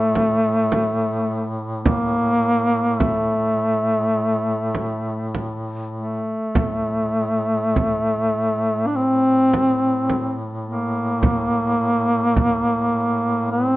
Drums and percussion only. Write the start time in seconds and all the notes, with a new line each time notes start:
0.16 frame drum
0.72 frame drum
1.86 frame drum
3.00 frame drum
4.75 frame drum
5.35 frame drum
6.55 frame drum
7.76 frame drum
9.54 frame drum
10.10 frame drum
11.23 frame drum
12.37 frame drum